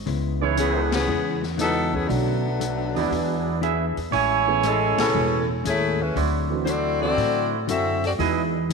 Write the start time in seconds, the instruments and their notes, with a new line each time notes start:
0.06 upright bass C#2, hollow-body jazz guitar C#3 G#3 B3 E4, open hi-hat
0.41 grand piano E3 G#3 B3 C#4 D#4, trumpet section E4 G#4 B4 C#5
0.57 hollow-body jazz guitar C#3 G#3 B3 E4, saxophone section E3 B3 C#4 G#4, closed hi-hat
0.92 saxophone section E3 B3 C#4 G#4, snare, ride
1.07 upright bass E2, hollow-body jazz guitar C#3 G#3 B3 E4
1.43 snare
1.57 hollow-body jazz guitar C#3 G#3 B3 E4, grand piano E3 G#3 B3 C#4 E4, saxophone section F#3 B3 D#4 A4, snare, closed hi-hat
1.93 saxophone section E3 B3 C#4 G#4, kick
2.08 upright bass B1, hollow-body jazz guitar B2 F#3 A3 D4, grand piano D3 A3 B3 C#4 F#4, saxophone section F#3 A3 B3 D4, open hi-hat
2.60 hollow-body jazz guitar B2 F#3 A3 D4, closed hi-hat
2.95 upright bass D#2, grand piano E3 G#3 B3 D4 F#4, trumpet section E4 G#4 B4 D5, open hi-hat
3.11 upright bass E2, hollow-body jazz guitar E3 B3 D4 G#4, open hi-hat
3.61 hollow-body jazz guitar E3 B3 D4 G#4, trumpet section E4 G#4 B4 E5, closed hi-hat
3.97 upright bass E2, open hi-hat
4.11 upright bass A1, hollow-body jazz guitar A2 G#3 C#4 E4, trumpet section E4 C#5 G#5, open hi-hat
4.47 grand piano E3 A3 B3 C#4 G#4
4.63 hollow-body jazz guitar A2 G#3 C#4 E4, saxophone section E3 G#3 C#4 A4, closed hi-hat
4.98 upright bass A#1, saxophone section E3 C#4 G#4 A4, snare, ride
5.14 upright bass E1, hollow-body jazz guitar A2 G#3 C#4 E4, grand piano E3 A3 B3 C#4 F#4
5.64 upright bass D#2, hollow-body jazz guitar A2 G#3 C#4 E4, saxophone section A3 E4 G#4 C#5, closed hi-hat
6.01 saxophone section G#3 C#4 E4 B4
6.15 upright bass D2, hollow-body jazz guitar D3 F#3 C4 E4, trumpet section E4 F#4 C5 D5, open hi-hat
6.50 grand piano E3 A3 C4 D4 F#4
6.64 hollow-body jazz guitar D3 F#3 C4 E4, saxophone section C4 F#4 A4 C5 D5, closed hi-hat
7.00 grand piano E3 A3 C4 D4 F#4, saxophone section C4 F#4 A4 D5
7.17 upright bass A2, hollow-body jazz guitar D3 F#3 C4 E4, open hi-hat
7.67 upright bass F#2, hollow-body jazz guitar D3 F#3 C4 E4, saxophone section C4 F#4 A4 E5, closed hi-hat
8.04 saxophone section C4 F#4 A4 D5, open hi-hat
8.18 upright bass E2, grand piano E3 G#3 B3 D#4 F#4, hollow-body jazz guitar E3 G#3 B3 D#4, trumpet section E4 G#4 B4 D#5, open hi-hat
8.69 hollow-body jazz guitar E3